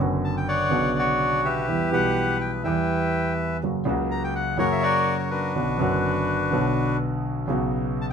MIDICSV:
0, 0, Header, 1, 3, 480
1, 0, Start_track
1, 0, Key_signature, 2, "minor"
1, 0, Tempo, 484653
1, 1676, Time_signature, 4, 2, 24, 8
1, 8050, End_track
2, 0, Start_track
2, 0, Title_t, "Bandoneon"
2, 0, Program_c, 0, 23
2, 241, Note_on_c, 0, 81, 77
2, 351, Note_off_c, 0, 81, 0
2, 367, Note_on_c, 0, 79, 76
2, 474, Note_off_c, 0, 79, 0
2, 477, Note_on_c, 0, 73, 62
2, 477, Note_on_c, 0, 74, 62
2, 480, Note_on_c, 0, 78, 94
2, 965, Note_off_c, 0, 73, 0
2, 972, Note_on_c, 0, 66, 62
2, 973, Note_off_c, 0, 78, 0
2, 980, Note_on_c, 0, 73, 84
2, 1396, Note_off_c, 0, 74, 0
2, 1431, Note_on_c, 0, 67, 58
2, 1434, Note_on_c, 0, 76, 71
2, 1435, Note_on_c, 0, 71, 56
2, 1461, Note_off_c, 0, 73, 0
2, 1643, Note_off_c, 0, 66, 0
2, 1880, Note_off_c, 0, 76, 0
2, 1895, Note_off_c, 0, 71, 0
2, 1909, Note_on_c, 0, 71, 68
2, 1915, Note_on_c, 0, 78, 90
2, 2350, Note_off_c, 0, 67, 0
2, 2359, Note_off_c, 0, 78, 0
2, 2385, Note_on_c, 0, 79, 80
2, 2494, Note_off_c, 0, 79, 0
2, 2605, Note_off_c, 0, 71, 0
2, 2612, Note_on_c, 0, 76, 61
2, 2620, Note_on_c, 0, 71, 55
2, 2622, Note_on_c, 0, 79, 77
2, 3304, Note_off_c, 0, 79, 0
2, 3537, Note_off_c, 0, 76, 0
2, 3541, Note_off_c, 0, 71, 0
2, 4071, Note_on_c, 0, 82, 91
2, 4191, Note_off_c, 0, 82, 0
2, 4198, Note_on_c, 0, 79, 84
2, 4302, Note_off_c, 0, 79, 0
2, 4312, Note_on_c, 0, 78, 93
2, 4532, Note_off_c, 0, 78, 0
2, 4543, Note_on_c, 0, 73, 69
2, 4544, Note_on_c, 0, 70, 66
2, 4546, Note_on_c, 0, 78, 91
2, 4599, Note_off_c, 0, 78, 0
2, 4669, Note_on_c, 0, 76, 78
2, 4776, Note_on_c, 0, 74, 99
2, 4777, Note_off_c, 0, 70, 0
2, 4783, Note_on_c, 0, 66, 70
2, 4789, Note_off_c, 0, 76, 0
2, 4792, Note_on_c, 0, 70, 64
2, 5112, Note_off_c, 0, 74, 0
2, 5129, Note_off_c, 0, 73, 0
2, 5144, Note_on_c, 0, 73, 68
2, 5243, Note_off_c, 0, 66, 0
2, 5254, Note_off_c, 0, 73, 0
2, 5254, Note_on_c, 0, 62, 51
2, 5255, Note_on_c, 0, 71, 76
2, 5258, Note_on_c, 0, 66, 53
2, 5466, Note_off_c, 0, 70, 0
2, 6904, Note_off_c, 0, 62, 0
2, 6904, Note_off_c, 0, 71, 0
2, 6906, Note_off_c, 0, 66, 0
2, 7935, Note_on_c, 0, 81, 87
2, 7985, Note_off_c, 0, 81, 0
2, 8050, End_track
3, 0, Start_track
3, 0, Title_t, "Grand piano"
3, 0, Program_c, 1, 0
3, 0, Note_on_c, 1, 30, 74
3, 0, Note_on_c, 1, 42, 67
3, 0, Note_on_c, 1, 50, 58
3, 0, Note_on_c, 1, 59, 54
3, 0, Note_on_c, 1, 61, 52
3, 2, Note_on_c, 1, 66, 68
3, 668, Note_off_c, 1, 50, 0
3, 675, Note_off_c, 1, 30, 0
3, 675, Note_off_c, 1, 59, 0
3, 677, Note_off_c, 1, 42, 0
3, 681, Note_off_c, 1, 61, 0
3, 684, Note_off_c, 1, 66, 0
3, 687, Note_on_c, 1, 50, 57
3, 699, Note_on_c, 1, 59, 55
3, 705, Note_on_c, 1, 47, 72
3, 713, Note_on_c, 1, 35, 74
3, 713, Note_on_c, 1, 49, 53
3, 725, Note_on_c, 1, 66, 72
3, 1612, Note_off_c, 1, 50, 0
3, 1618, Note_off_c, 1, 59, 0
3, 1621, Note_off_c, 1, 47, 0
3, 1625, Note_off_c, 1, 35, 0
3, 1625, Note_off_c, 1, 49, 0
3, 1632, Note_off_c, 1, 66, 0
3, 1664, Note_on_c, 1, 52, 50
3, 1667, Note_on_c, 1, 40, 44
3, 1671, Note_on_c, 1, 67, 46
3, 1672, Note_on_c, 1, 55, 38
3, 1674, Note_on_c, 1, 59, 38
3, 1871, Note_off_c, 1, 52, 0
3, 1873, Note_off_c, 1, 40, 0
3, 1875, Note_off_c, 1, 55, 0
3, 1875, Note_off_c, 1, 67, 0
3, 1876, Note_off_c, 1, 59, 0
3, 1886, Note_on_c, 1, 52, 62
3, 1900, Note_on_c, 1, 55, 58
3, 1907, Note_on_c, 1, 47, 74
3, 1913, Note_on_c, 1, 35, 68
3, 1913, Note_on_c, 1, 59, 53
3, 1925, Note_on_c, 1, 67, 70
3, 2581, Note_off_c, 1, 52, 0
3, 2588, Note_off_c, 1, 55, 0
3, 2591, Note_off_c, 1, 47, 0
3, 2594, Note_off_c, 1, 35, 0
3, 2594, Note_off_c, 1, 59, 0
3, 2600, Note_off_c, 1, 67, 0
3, 2615, Note_on_c, 1, 52, 73
3, 2620, Note_on_c, 1, 55, 57
3, 2632, Note_on_c, 1, 40, 77
3, 2642, Note_on_c, 1, 59, 55
3, 2649, Note_on_c, 1, 67, 71
3, 3533, Note_off_c, 1, 55, 0
3, 3537, Note_off_c, 1, 52, 0
3, 3539, Note_off_c, 1, 40, 0
3, 3544, Note_off_c, 1, 59, 0
3, 3548, Note_off_c, 1, 67, 0
3, 3599, Note_on_c, 1, 54, 52
3, 3603, Note_on_c, 1, 42, 46
3, 3603, Note_on_c, 1, 49, 45
3, 3605, Note_on_c, 1, 58, 37
3, 3609, Note_on_c, 1, 66, 50
3, 3795, Note_off_c, 1, 42, 0
3, 3795, Note_off_c, 1, 49, 0
3, 3795, Note_off_c, 1, 54, 0
3, 3796, Note_off_c, 1, 58, 0
3, 3798, Note_off_c, 1, 66, 0
3, 3815, Note_on_c, 1, 49, 75
3, 3825, Note_on_c, 1, 54, 66
3, 3833, Note_on_c, 1, 37, 77
3, 3844, Note_on_c, 1, 58, 57
3, 3853, Note_on_c, 1, 66, 76
3, 4507, Note_off_c, 1, 54, 0
3, 4508, Note_off_c, 1, 49, 0
3, 4510, Note_off_c, 1, 37, 0
3, 4516, Note_off_c, 1, 58, 0
3, 4520, Note_off_c, 1, 66, 0
3, 4530, Note_on_c, 1, 49, 73
3, 4544, Note_on_c, 1, 54, 73
3, 4545, Note_on_c, 1, 42, 71
3, 4550, Note_on_c, 1, 58, 57
3, 4560, Note_on_c, 1, 66, 69
3, 5446, Note_off_c, 1, 49, 0
3, 5454, Note_off_c, 1, 42, 0
3, 5454, Note_off_c, 1, 54, 0
3, 5456, Note_off_c, 1, 58, 0
3, 5461, Note_off_c, 1, 66, 0
3, 5497, Note_on_c, 1, 59, 37
3, 5498, Note_on_c, 1, 66, 48
3, 5501, Note_on_c, 1, 50, 43
3, 5501, Note_on_c, 1, 61, 42
3, 5502, Note_on_c, 1, 47, 50
3, 5503, Note_on_c, 1, 35, 55
3, 5700, Note_off_c, 1, 59, 0
3, 5701, Note_off_c, 1, 66, 0
3, 5703, Note_off_c, 1, 47, 0
3, 5703, Note_off_c, 1, 50, 0
3, 5703, Note_off_c, 1, 61, 0
3, 5704, Note_off_c, 1, 35, 0
3, 5721, Note_on_c, 1, 50, 63
3, 5731, Note_on_c, 1, 59, 52
3, 5737, Note_on_c, 1, 42, 75
3, 5743, Note_on_c, 1, 30, 66
3, 5749, Note_on_c, 1, 73, 56
3, 5757, Note_on_c, 1, 66, 77
3, 6416, Note_off_c, 1, 50, 0
3, 6421, Note_off_c, 1, 59, 0
3, 6424, Note_off_c, 1, 42, 0
3, 6427, Note_off_c, 1, 30, 0
3, 6430, Note_off_c, 1, 73, 0
3, 6434, Note_off_c, 1, 66, 0
3, 6445, Note_on_c, 1, 50, 64
3, 6461, Note_on_c, 1, 59, 60
3, 6466, Note_on_c, 1, 35, 67
3, 6469, Note_on_c, 1, 47, 72
3, 6472, Note_on_c, 1, 73, 54
3, 6490, Note_on_c, 1, 66, 66
3, 7375, Note_off_c, 1, 50, 0
3, 7383, Note_off_c, 1, 59, 0
3, 7386, Note_off_c, 1, 35, 0
3, 7387, Note_off_c, 1, 47, 0
3, 7388, Note_off_c, 1, 73, 0
3, 7397, Note_off_c, 1, 66, 0
3, 7405, Note_on_c, 1, 49, 70
3, 7422, Note_on_c, 1, 54, 59
3, 7426, Note_on_c, 1, 35, 75
3, 7426, Note_on_c, 1, 47, 75
3, 7433, Note_on_c, 1, 59, 57
3, 7448, Note_on_c, 1, 66, 65
3, 8050, Note_off_c, 1, 35, 0
3, 8050, Note_off_c, 1, 47, 0
3, 8050, Note_off_c, 1, 49, 0
3, 8050, Note_off_c, 1, 54, 0
3, 8050, Note_off_c, 1, 59, 0
3, 8050, Note_off_c, 1, 66, 0
3, 8050, End_track
0, 0, End_of_file